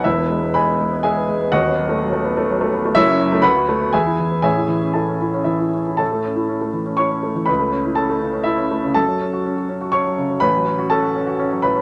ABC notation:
X:1
M:3/4
L:1/16
Q:1/4=122
K:Bmix
V:1 name="Grand piano"
[EBe]4 [Bgb]4 [Geg]4 | [Fdf]12 | [K:A] [Ece]4 [Bfb]4 [Geg]4 | [Geg]4 [Aea]4 [Ee]4 |
[Aa]8 [cc']4 | [Bb]4 [Aa]4 [Ee]4 | [Aa]8 [cc']4 | [Bb]4 [Aa]4 z2 [Bb]2 |]
V:2 name="Grand piano"
[E,,,E,,] B, G, B, G, B, G, B, G, B, G, B, | [D,,,D,,] B, F, A, F, A, B, A, F, A, B, A, | [K:A] [F,,,F,,] C F, A, D,, F A, B, E,, E E, B, | [A,,,A,,] E E, C E C E C E, E C E |
A,, A, C E C A, E, C E C A, E, | C,, A, C E C A, C, C2 C A, C, | F,, F, C F C F C F C F, C, F, | A,,, F, C F C F C F C F, A,, F, |]